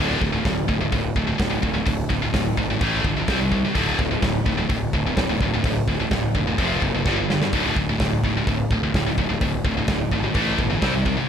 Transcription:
Already playing: picked electric bass D1, distorted electric guitar D2 A2
0.00 distorted electric guitar D3
0.21 picked electric bass D1, distorted electric guitar D2 A2, kick
0.33 distorted electric guitar D2 A2
0.45 picked electric bass D1, distorted electric guitar D2 A2, kick, snare, open hi-hat
0.68 picked electric bass D1, distorted electric guitar D2 A2, kick
0.81 distorted electric guitar D2 A2
0.92 picked electric bass D1, distorted electric guitar D2 A2, kick, open hi-hat
1.16 picked electric bass D1, distorted electric guitar D2 A2, kick
1.27 distorted electric guitar D2 A2
1.38 picked electric bass D1, distorted electric guitar D2 A2, kick, snare, open hi-hat
1.50 distorted electric guitar D2 A2
1.62 picked electric bass D1, distorted electric guitar D2 A2, kick
1.74 distorted electric guitar D2 A2
1.85 picked electric bass D1, distorted electric guitar D2 A2, kick, open hi-hat
2.09 picked electric bass D1, distorted electric guitar D2 A2, kick
2.22 distorted electric guitar D2 A2
2.34 picked electric bass D1, distorted electric guitar D2 A2, kick, snare, open hi-hat
2.57 picked electric bass G#1, distorted electric guitar D2 A2, kick
2.70 distorted electric guitar D2 A2
2.81 picked electric bass A1, distorted electric guitar A2 E3 A3, kick, open hi-hat
3.04 picked electric bass G1, distorted electric guitar A2 E3, kick
3.17 distorted electric guitar A2 E3
3.28 picked electric bass C2, distorted electric guitar C3 G3 C4, kick, snare, open hi-hat
3.41 distorted electric guitar C3 G3
3.51 distorted electric guitar C3 G3, kick
3.65 distorted electric guitar C3 G3
3.75 picked electric bass D1, distorted electric guitar D2 A2 D3, kick, open hi-hat
3.99 picked electric bass D1, distorted electric guitar D2 A2, kick
4.11 distorted electric guitar D2 A2
4.22 picked electric bass D1, distorted electric guitar D2 A2, kick, snare, open hi-hat
4.46 picked electric bass D1, distorted electric guitar D2 A2, kick
4.58 distorted electric guitar D2 A2
4.69 picked electric bass D1, distorted electric guitar D2 A2, kick, open hi-hat
4.93 picked electric bass D1, distorted electric guitar D2 A2, kick
5.07 distorted electric guitar D2 A2
5.17 picked electric bass D1, distorted electric guitar D2 A2, kick, snare, open hi-hat
5.30 distorted electric guitar D2 A2
5.41 picked electric bass D1, distorted electric guitar D2 A2, kick
5.54 distorted electric guitar D2 A2
5.64 picked electric bass D1, distorted electric guitar D2 A2, kick, open hi-hat
5.88 picked electric bass D1, distorted electric guitar D2 A2, kick
6.00 distorted electric guitar D2 A2
6.11 picked electric bass D1, distorted electric guitar D2 A2, kick, snare, open hi-hat
6.35 picked electric bass E1, distorted electric guitar D2 A2, kick
6.47 distorted electric guitar D2 A2
6.58 picked electric bass F1, distorted electric guitar F2 C3 F3, kick, open hi-hat
6.82 picked electric bass F#1, distorted electric guitar F2 C3, kick
6.94 distorted electric guitar F2 C3
7.06 picked electric bass G1, distorted electric guitar G2 D3 G3, kick, snare
7.18 distorted electric guitar G2 D3
7.30 distorted electric guitar G2 D3, snare
7.41 distorted electric guitar G2 D3, snare
7.53 picked electric bass D1, distorted electric guitar D2 A2 D3, kick, open hi-hat
7.76 picked electric bass D1, distorted electric guitar D2 A2, kick
7.89 distorted electric guitar D2 A2
7.99 picked electric bass D1, distorted electric guitar D2 A2, kick, snare, open hi-hat
8.24 picked electric bass D1, distorted electric guitar D2 A2, kick
8.37 distorted electric guitar D2 A2
8.47 picked electric bass D1, distorted electric guitar D2 A2, kick, open hi-hat
8.71 picked electric bass D1, distorted electric guitar D2 A2, kick
8.83 distorted electric guitar D2 A2
8.94 picked electric bass D1, distorted electric guitar D2 A2, kick, snare, open hi-hat
9.06 distorted electric guitar D2 A2
9.18 picked electric bass D1, distorted electric guitar D2 A2, kick
9.29 distorted electric guitar D2 A2
9.41 picked electric bass D1, distorted electric guitar D2 A2, kick, open hi-hat
9.65 picked electric bass D1, distorted electric guitar D2 A2, kick
9.77 distorted electric guitar D2 A2
9.88 picked electric bass D1, distorted electric guitar D2 A2, kick, snare, open hi-hat
10.11 picked electric bass G#1, distorted electric guitar D2 A2, kick
10.23 distorted electric guitar D2 A2
10.34 picked electric bass A1, distorted electric guitar A2 E3 A3, kick, open hi-hat
10.59 picked electric bass G1, distorted electric guitar A2 E3, kick
10.70 distorted electric guitar A2 E3
10.82 picked electric bass C2, distorted electric guitar C3 G3 C4, kick, snare, open hi-hat
10.94 distorted electric guitar C3 G3
11.05 distorted electric guitar C3 G3, kick
11.17 distorted electric guitar C3 G3

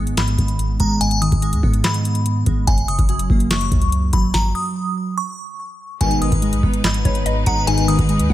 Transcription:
Already playing: 808-style bass G#1, synth keys G#2 D#3 G#3 B3, synth bell D#6
0.07 closed hi-hat
0.17 synth keys G#2, synth bell B5, snare, clap, closed hi-hat
0.28 closed hi-hat
0.38 808-style bass G#1, kick, closed hi-hat
0.48 closed hi-hat
0.59 closed hi-hat
0.80 808-style bass G#1, synth keys G#3, synth bell A#5, kick, closed hi-hat
1.01 synth keys G#2, synth bell G#5, closed hi-hat
1.11 closed hi-hat
1.22 synth keys D#3, synth bell D#6, closed hi-hat
1.32 808-style bass G#1, kick, closed hi-hat
1.42 synth keys G#3, closed hi-hat
1.53 808-style bass D#2, closed hi-hat
1.63 808-style bass G#2, synth keys B3, kick
1.74 closed hi-hat
1.84 synth keys G#2, synth bell B5, snare, clap, closed hi-hat
1.94 closed hi-hat
2.05 closed hi-hat
2.15 closed hi-hat
2.26 closed hi-hat
2.46 808-style bass G#1, synth keys G#3, kick, closed hi-hat
2.67 808-style bass F#1, synth keys F#2, synth bell G#5, kick, closed hi-hat
2.78 closed hi-hat
2.88 synth keys C#3, synth bell D#6, closed hi-hat
2.99 808-style bass F#1, kick, closed hi-hat
3.09 synth keys F#3, closed hi-hat
3.19 closed hi-hat
3.30 808-style bass F#1, synth keys A#3, kick
3.40 closed hi-hat
3.51 synth keys F#2, synth bell C#6, snare, clap, closed hi-hat
3.61 closed hi-hat
3.72 808-style bass C#2, kick, closed hi-hat
3.82 closed hi-hat
3.92 closed hi-hat
4.13 808-style bass F#1, synth keys F#3, synth bell B5, kick, closed hi-hat
4.34 synth bell A#5, kick, snare
4.55 synth bell D#6
5.18 synth bell C#6
6.01 808-style bass G#1, analog polysynth G#2 B2 D#3, synth keys G#2, string section G#3 D#4 B4, synth bell G#5, kick, closed hi-hat
6.11 closed hi-hat
6.22 synth keys D#3, synth bell D#6, closed hi-hat
6.32 808-style bass G#1, kick, closed hi-hat
6.42 synth keys G#3, closed hi-hat
6.53 808-style bass A#1, closed hi-hat
6.63 808-style bass G#1, synth keys B3, kick
6.74 closed hi-hat
6.84 synth keys G#2, synth bell B5, snare, clap, closed hi-hat
6.94 closed hi-hat
7.05 808-style bass G#1, synth pluck C#5, kick, closed hi-hat
7.15 closed hi-hat
7.26 synth pluck D#5, closed hi-hat
7.46 808-style bass G#1, synth keys G#3, synth pluck F#5, synth bell A#5, kick, closed hi-hat
7.67 analog polysynth G#2 B2 D#3, synth keys G#2, synth bell G#5, synth pluck G#5, closed hi-hat
7.78 closed hi-hat
7.88 synth keys D#3, synth bell D#6, closed hi-hat
7.99 808-style bass G#1, kick, closed hi-hat
8.09 synth keys G#3, closed hi-hat
8.19 808-style bass D#2, closed hi-hat
8.30 808-style bass G#2, synth keys B3, synth pluck F#5, kick

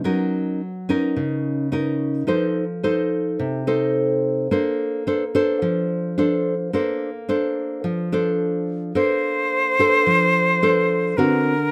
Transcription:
0.04 nylon-string guitar F#3 C#4 D#4 A#4
0.89 nylon-string guitar C#4 D#4 A#4
1.16 nylon-string guitar C#3
1.72 nylon-string guitar C#4 D#4 A#4
2.27 nylon-string guitar F3 D#4 A4 C5
2.83 nylon-string guitar D#4 A4 C5
3.39 nylon-string guitar C3
3.67 nylon-string guitar D#4 A4 C5
4.51 nylon-string guitar A#3 D4 A4 C5
5.07 nylon-string guitar D4 A4 C5
5.35 nylon-string guitar D4 A4 C5
5.62 nylon-string guitar F3
6.18 nylon-string guitar D4 A4 C5
6.73 nylon-string guitar A#3 D4 A4 C5
7.29 nylon-string guitar D4 A4 C5
7.84 nylon-string guitar F3
8.12 nylon-string guitar D4 A4 C5
8.95 nylon-string guitar A#3 D4 A4 C5, flute C5
9.79 nylon-string guitar D4 A4 C5
10.07 nylon-string guitar F3
10.62 nylon-string guitar D4 A4 C5
11.17 nylon-string guitar D3 C4 F#4 A#4, flute A#4

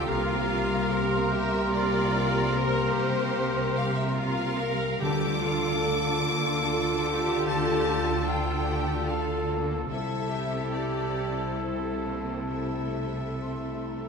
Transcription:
Already playing: harp D3 A3 D4 F4 A4 D5, oboe A4
0.07 double bass section C2, cello section C3, harp C3, french horn section A#3 G4, viola section F4, clarinet G4, violin section A#4 F5, oboe A#4, flute section C6
0.36 harp G3
0.64 harp A#3
0.91 harp G4, viola section A#4
1.31 viola section G4, violin section E5
1.46 harp A#4
1.72 viola section F4, harp C5, violin section D5
2.01 harp A#3
2.28 harp G3
2.54 harp C3, viola section A#4, violin section C5
2.82 harp A#3
2.95 viola section G4
3.08 harp G3
3.35 harp G4
3.62 harp C5
3.75 violin section F5
3.89 harp A#4
3.96 violin section E5
4.16 viola section F4, harp C5, violin section F5
4.45 harp A#3
4.59 viola section A#4
4.74 harp G3
5.01 double bass section D2, cello section D3, timpani D3, harp D3, clarinet F4, french horn section F4 A4, viola section G4, violin section A4 D6, oboe A4, flute section A5
5.31 harp D4
5.44 viola section F4
5.58 harp A3
5.85 harp F4, viola section A4
6.25 viola section A#3
6.38 harp F4
6.66 viola section A4
6.92 harp A3
7.06 viola section G4
7.19 harp D4
7.45 harp D3, violin section A5
7.73 harp A3
7.99 harp D4
8.27 harp F4, viola section F4, violin section G5
8.68 viola section G4
8.81 harp F4
9.08 viola section A4, violin section F5
9.35 harp A3
9.49 viola section A#3
9.62 harp D4
9.89 double bass section C2, harp C3, cello section C3, french horn section C4 E4, clarinet E4, violin section A4 E5, viola section A4, oboe A4, flute section A5
10.16 harp C4
10.31 viola section G4
10.45 harp A3
10.74 harp E4, violin section D5
11.32 harp E4
11.61 violin section A4 C5, viola section A4
11.89 harp A3
12.04 viola section A#3
12.19 harp C4
12.49 harp C3, viola section A3, violin section A4 E5
12.80 harp A3
13.10 harp C4
13.41 harp E4, flute section C6
13.86 flute section A#5
14.02 harp E4

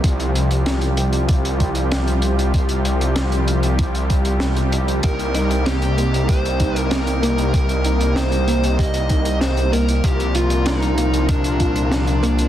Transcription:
Already playing: supersaw synth C3 G3 G4
0.04 detuned saw bass C2, supersaw synth F3 F4, kick, closed hi-hat
0.20 closed hi-hat
0.35 closed hi-hat
0.51 closed hi-hat
0.66 snare, closed hi-hat
0.81 closed hi-hat
0.97 closed hi-hat
1.13 closed hi-hat
1.29 kick, closed hi-hat
1.45 closed hi-hat
1.60 kick, closed hi-hat
1.75 closed hi-hat
1.92 snare, closed hi-hat
2.07 closed hi-hat
2.22 closed hi-hat
2.39 closed hi-hat
2.54 kick, closed hi-hat
2.69 closed hi-hat
2.85 closed hi-hat
3.01 closed hi-hat
3.16 snare, closed hi-hat
3.32 closed hi-hat
3.48 closed hi-hat
3.63 closed hi-hat
3.79 kick, closed hi-hat
3.95 closed hi-hat
4.10 kick, closed hi-hat
4.25 closed hi-hat
4.40 snare, closed hi-hat
4.56 closed hi-hat
4.72 closed hi-hat
4.88 closed hi-hat
5.03 detuned saw bass C2, supersaw synth A#3 D#4, synth arpeggio sound G4, lead electric guitar A#4, kick, closed hi-hat
5.19 closed hi-hat
5.34 synth arpeggio sound D#4, lead electric guitar A#4, closed hi-hat
5.51 closed hi-hat
5.66 synth arpeggio sound C4, lead electric guitar G4, snare, closed hi-hat
5.82 closed hi-hat
5.97 synth arpeggio sound A#3, closed hi-hat
6.14 closed hi-hat
6.29 synth arpeggio sound G4, lead electric guitar C5, kick, closed hi-hat
6.45 closed hi-hat
6.60 synth arpeggio sound D#4, kick, closed hi-hat
6.76 lead electric guitar A#4, closed hi-hat
6.91 synth arpeggio sound C4, lead electric guitar A#4, snare, closed hi-hat
7.07 closed hi-hat
7.22 synth arpeggio sound A#3, closed hi-hat
7.38 closed hi-hat
7.54 synth arpeggio sound G4, lead electric guitar A#4, kick, closed hi-hat
7.69 closed hi-hat
7.84 synth arpeggio sound D#4, closed hi-hat
8.01 closed hi-hat
8.16 synth arpeggio sound C4, lead electric guitar C5, snare, closed hi-hat
8.32 closed hi-hat
8.48 synth arpeggio sound A#3, closed hi-hat
8.64 closed hi-hat
8.79 synth arpeggio sound G4, lead electric guitar D#5, kick, closed hi-hat
8.94 closed hi-hat
9.09 synth arpeggio sound D#4, kick, closed hi-hat
9.25 closed hi-hat
9.41 synth arpeggio sound C4, lead electric guitar C5, snare, closed hi-hat
9.57 closed hi-hat
9.72 synth arpeggio sound A#3, lead electric guitar A#4, closed hi-hat
9.88 closed hi-hat
10.04 detuned saw bass C2, supersaw synth A#2 F3 F4 A#4, lead electric guitar G4, synth arpeggio sound A#4, kick, closed hi-hat
10.20 closed hi-hat
10.35 synth arpeggio sound F4, lead electric guitar F4, closed hi-hat
10.50 closed hi-hat
10.66 synth arpeggio sound D4, lead electric guitar D#4, snare, closed hi-hat
10.82 closed hi-hat
10.98 synth arpeggio sound A#3, closed hi-hat
11.14 closed hi-hat
11.29 lead electric guitar D4, synth arpeggio sound A#4, kick, closed hi-hat
11.44 closed hi-hat
11.60 synth arpeggio sound F4, kick, closed hi-hat
11.76 closed hi-hat
11.91 synth arpeggio sound D4, snare, closed hi-hat
12.07 closed hi-hat
12.22 synth arpeggio sound A#3, closed hi-hat
12.39 closed hi-hat

